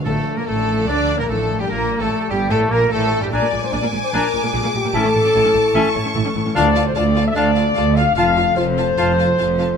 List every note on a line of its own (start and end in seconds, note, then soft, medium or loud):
0.00 0.15 F3 soft
0.00 0.26 D4 soft
0.00 0.36 A4 soft
0.05 0.14 A1 medium
0.05 0.14 A2 medium
0.05 1.71 D3 medium
0.05 0.64 D3 medium
0.05 0.34 A3 medium
0.05 0.35 A3 medium
0.05 0.38 A4 medium
0.05 0.20 A4 medium
0.05 0.13 A4 medium
0.05 0.35 A4 medium
0.05 0.39 A4 medium
0.17 1.28 F3 soft
0.28 1.18 D4 medium
0.37 0.41 A#2 medium
0.37 0.47 A#3 medium
0.37 1.71 A4 soft
0.37 0.46 A#4 medium
0.37 0.47 A#4 medium
0.37 0.49 A#4 medium
0.37 0.47 A#4 medium
0.37 0.48 A#4 medium
0.47 0.88 A1 medium
0.47 0.88 A2 medium
0.47 0.88 A3 medium
0.47 1.08 F4 medium
0.47 0.88 A4 medium
0.47 0.87 A4 medium
0.47 0.88 A4 medium
0.47 0.89 A4 medium
0.58 0.98 D5 medium
0.68 0.88 A5 medium
0.79 1.72 F5 medium
0.87 1.19 D2 medium
0.87 1.19 D3 medium
0.87 1.18 D4 medium
0.87 1.20 D4 medium
0.87 1.01 D5 medium
0.87 1.19 D5 medium
0.87 1.22 D5 medium
0.87 1.19 D5 medium
0.87 1.19 D5 loud
0.87 1.72 A5 medium
0.99 2.09 D5 medium
1.09 1.72 F4 medium
1.18 1.24 A#2 medium
1.18 1.29 A#3 medium
1.18 1.39 D4 medium
1.18 1.29 A#4 medium
1.18 1.24 A#4 medium
1.18 1.29 A#4 medium
1.18 1.31 A#4 medium
1.28 1.59 A1 medium
1.28 1.60 A2 medium
1.28 1.48 F3 medium
1.28 1.36 A3 medium
1.28 1.59 A3 medium
1.28 1.59 A4 medium
1.28 1.61 A4 medium
1.28 1.60 A4 medium
1.28 1.62 A4 medium
1.28 1.59 A4 medium
1.40 1.59 D4 medium
1.50 1.71 F3 soft
1.59 1.64 G2 medium
1.59 1.69 G3 medium
1.59 1.65 G3 medium
1.59 1.99 D4 medium
1.59 1.69 G4 medium
1.59 1.70 G4 medium
1.68 1.99 A#1 medium
1.68 1.99 A#2 medium
1.68 3.31 A#2 medium
1.68 2.00 A#3 medium
1.68 1.99 A#4 loud
1.68 1.76 A#4 medium
1.68 1.83 A#4 medium
1.68 2.00 A#4 medium
1.68 2.03 A#4 medium
1.90 2.80 G3 medium
1.99 2.07 A1 medium
1.99 2.08 A2 medium
1.99 2.30 A3 medium
1.99 2.32 A3 medium
1.99 3.62 D4 medium
1.99 2.29 A4 medium
1.99 2.08 A4 medium
1.99 2.32 A4 medium
1.99 2.33 A4 medium
2.10 2.29 D5 medium
2.20 2.59 G4 medium
2.29 2.50 G1 medium
2.29 2.50 G2 medium
2.29 2.37 G3 medium
2.29 2.51 G3 medium
2.29 2.50 G4 medium
2.29 2.38 G4 medium
2.29 2.50 G4 medium
2.29 2.53 G4 medium
2.29 2.50 D5 medium
2.40 4.02 D6 medium
2.49 2.71 A1 medium
2.49 2.71 A2 medium
2.49 2.70 A3 medium
2.49 2.71 A4 loud
2.49 2.59 A4 medium
2.49 2.73 A4 medium
2.49 2.74 A4 medium
2.49 2.70 D5 medium
2.61 3.34 G4 medium
2.69 2.91 A#1 medium
2.69 2.91 A#2 medium
2.69 2.90 A#3 medium
2.69 2.80 A#3 medium
2.69 2.91 A#4 loud
2.69 2.91 A#4 medium
2.69 2.93 A#4 medium
2.69 2.91 A#4 medium
2.69 3.72 D5 medium
2.81 3.01 G3 medium
2.90 3.21 A1 medium
2.90 3.21 A2 medium
2.90 3.21 A3 medium
2.90 3.23 A3 medium
2.90 3.11 A#3 medium
2.90 3.22 A4 medium
2.90 3.21 A4 medium
2.90 3.21 A4 loud
2.90 3.22 A4 loud
2.90 3.22 A4 medium
3.02 3.22 G3 medium
3.12 3.41 A#3 medium
3.21 3.26 G2 medium
3.21 3.32 G3 medium
3.21 3.26 G3 medium
3.21 3.34 G3 medium
3.21 3.26 G4 medium
3.21 3.31 G4 medium
3.21 3.32 G4 medium
3.21 3.28 G4 medium
3.21 3.33 G4 medium
3.31 3.37 A#1 medium
3.31 3.36 A#2 medium
3.31 4.95 A#2 medium
3.31 3.36 D4 medium
3.31 3.46 D4 medium
3.31 3.62 D5 loud
3.31 4.89 G#5 medium
3.31 3.48 G#5 medium
3.31 3.51 A#5 medium
3.31 5.71 D6 medium
3.42 3.46 A#2 medium
3.42 4.52 A#3 medium
3.42 3.46 A#3 medium
3.52 3.57 A#1 medium
3.52 3.56 A#2 medium
3.52 3.56 G#3 medium
3.52 4.43 G#3 medium
3.62 3.66 A#2 medium
3.62 3.66 A#3 medium
3.62 4.95 D4 medium
3.62 3.73 C5 medium
3.72 3.77 A#1 medium
3.72 3.76 A#2 medium
3.72 3.76 D4 medium
3.72 3.92 D5 medium
3.72 3.87 D5 loud
3.82 3.87 A#2 medium
3.82 3.86 A#3 medium
3.82 4.22 G#4 medium
3.92 3.97 A#1 medium
3.92 3.97 A#2 medium
3.92 3.96 G#3 medium
3.92 4.12 D5 medium
4.03 4.13 C5 loud
4.03 4.95 D6 medium
4.12 4.17 A#1 loud
4.12 4.17 A#2 medium
4.12 4.28 D4 medium
4.12 4.18 D4 medium
4.12 4.43 A#4 loud
4.12 4.33 D5 medium
4.12 4.28 G#5 medium
4.12 4.33 A#5 medium
4.24 4.95 G#4 medium
4.34 4.38 A#1 medium
4.34 4.38 A#2 medium
4.34 4.38 G#3 medium
4.34 4.95 D5 medium
4.43 4.48 A#2 medium
4.43 4.63 G#3 medium
4.43 4.47 A#3 medium
4.43 4.74 G#4 loud
4.53 4.58 A#1 medium
4.53 4.58 A#2 loud
4.53 4.72 A#3 medium
4.53 4.57 D4 medium
4.63 4.68 A#2 medium
4.63 4.83 G#3 medium
4.63 4.67 A#3 medium
4.73 4.78 A#1 medium
4.73 4.78 A#2 medium
4.73 4.77 G#3 medium
4.73 4.95 A#3 medium
4.73 4.94 G4 loud
4.84 4.88 A#2 medium
4.84 4.96 G#3 medium
4.84 4.88 A#3 medium
4.93 4.98 A1 loud
4.93 6.57 A2 medium
4.93 4.98 A2 medium
4.93 5.08 C#4 medium
4.93 4.97 E4 loud
4.93 6.16 A4 loud
4.93 5.08 E5 medium
4.93 5.12 A5 medium
4.93 6.53 A5 medium
5.04 5.08 A2 medium
5.04 6.13 E3 medium
5.04 5.08 C#4 medium
5.14 5.19 A1 medium
5.14 5.18 A2 medium
5.14 6.05 A3 medium
5.14 5.19 A3 medium
5.24 5.28 A2 medium
5.24 5.28 C#4 medium
5.24 6.57 E4 medium
5.34 5.39 A1 loud
5.34 5.38 A2 loud
5.34 5.39 E4 medium
5.34 5.94 C#5 medium
5.44 5.48 A2 medium
5.44 5.48 C#4 medium
5.44 5.84 A4 medium
5.54 5.58 A1 medium
5.54 5.58 A2 medium
5.54 5.59 A3 medium
5.54 5.73 E5 medium
5.65 6.58 C#6 medium
5.74 5.79 A1 loud
5.74 5.79 A2 medium
5.74 5.89 C#4 medium
5.74 5.79 E4 medium
5.74 6.57 E5 medium
5.74 5.89 E5 medium
5.74 5.94 A5 medium
5.74 6.56 C#6 medium
5.85 6.95 A4 medium
5.95 6.00 A1 medium
5.95 5.99 A2 medium
5.95 5.99 A3 medium
5.95 6.57 C#5 medium
6.05 6.09 A2 medium
6.05 6.23 A3 medium
6.05 6.09 C#4 medium
6.15 6.19 A1 loud
6.15 6.19 A2 loud
6.15 6.34 E3 medium
6.15 6.19 E4 medium
6.25 6.29 A2 medium
6.25 6.45 A3 medium
6.25 6.29 C#4 medium
6.35 6.40 A1 medium
6.35 6.39 A2 medium
6.35 6.57 E3 medium
6.35 6.39 A3 medium
6.45 6.50 A2 medium
6.45 6.75 A3 medium
6.45 6.49 C#4 medium
6.55 6.91 D2 medium
6.55 6.91 D2 loud
6.55 7.12 D3 medium
6.55 8.19 D3 medium
6.55 6.70 D4 medium
6.55 6.63 F4 medium
6.55 6.84 D5 loud
6.55 6.69 F5 medium
6.55 6.64 F5 medium
6.55 6.74 A5 medium
6.55 6.64 A5 medium
6.66 7.77 D4 medium
6.75 7.66 A3 medium
6.75 6.84 F4 medium
6.75 6.84 F5 medium
6.75 6.83 A5 medium
6.86 7.05 F4 medium
6.86 6.96 C5 loud
6.95 7.31 D2 medium
6.95 7.32 D2 medium
6.95 7.03 F4 medium
6.95 7.47 A4 medium
6.95 7.26 D5 loud
6.95 7.04 F5 medium
6.95 7.03 A5 medium
7.06 7.56 F4 medium
7.15 7.23 F4 medium
7.15 7.24 F5 medium
7.15 7.36 F5 medium
7.15 7.25 A5 medium
7.26 7.36 E5 loud
7.26 8.77 A5 medium
7.35 7.72 D2 medium
7.35 7.50 D4 medium
7.35 7.44 F4 medium
7.35 7.96 D5 loud
7.35 7.43 F5 medium
7.35 7.51 F5 medium
7.35 8.67 F5 medium
7.35 7.44 A5 medium
7.35 7.55 A5 medium
7.48 8.46 A4 medium
7.55 7.64 F4 medium
7.55 8.37 F4 medium
7.55 7.63 F5 medium
7.55 7.65 A5 medium
7.67 7.87 A3 medium
7.75 8.12 D2 medium
7.75 7.97 D4 medium
7.75 7.84 F4 medium
7.75 7.83 F5 medium
7.75 7.85 A5 medium
7.88 8.07 A3 medium
7.95 8.19 D4 medium
7.95 8.04 F4 medium
7.95 8.15 F5 loud
7.95 8.05 F5 medium
7.95 8.05 A5 medium
8.08 8.26 A3 medium
8.15 8.53 F1 medium
8.15 8.53 F2 medium
8.15 9.77 F3 medium
8.15 8.24 F4 medium
8.15 8.31 F4 medium
8.15 8.23 F5 medium
8.15 8.56 F5 loud
8.15 8.31 F5 medium
8.15 8.36 A5 medium
8.15 8.26 A5 medium
8.28 9.37 A3 medium
8.36 8.44 F4 medium
8.36 8.56 F4 medium
8.36 8.44 F5 medium
8.36 8.47 A5 medium
8.47 9.17 A4 medium
8.56 8.93 F1 medium
8.56 8.94 F2 medium
8.56 8.64 F4 medium
8.56 9.27 F4 medium
8.56 9.77 C5 loud
8.56 8.64 F5 medium
8.56 8.67 A5 medium
8.68 8.87 F5 medium
8.77 8.85 F4 medium
8.77 8.86 F5 medium
8.77 8.96 A5 medium
8.77 8.87 A5 medium
8.88 9.07 F5 medium
8.98 9.34 F1 medium
8.98 9.34 F2 medium
8.98 9.12 F4 medium
8.98 9.06 F4 medium
8.98 9.06 F5 medium
8.98 9.13 F5 medium
8.98 9.77 A5 medium
8.98 9.17 A5 medium
8.98 9.07 A5 medium
9.08 9.77 F5 medium
9.18 9.26 F4 medium
9.18 9.77 A4 medium
9.18 9.27 F5 medium
9.18 9.28 A5 medium
9.28 9.47 F4 medium
9.38 9.75 F1 medium
9.38 9.75 F2 medium
9.38 9.57 A3 medium
9.38 9.46 F4 medium
9.38 9.46 F5 medium
9.38 9.47 A5 medium
9.48 9.67 F4 medium
9.58 9.77 A3 medium
9.58 9.66 F4 medium
9.58 9.67 F5 medium
9.58 9.67 A5 medium
9.68 9.77 F4 medium